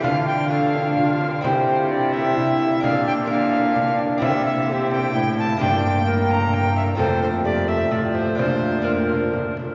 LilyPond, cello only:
\new Staff \with { instrumentName = "Cello" } { \clef bass \time 3/4 \key c \mixolydian \tempo 4 = 129 d2. | c2. | bes,2. | c2 a,4 |
g,2. | f,2 a,4 | bes,2~ bes,8 r8 | }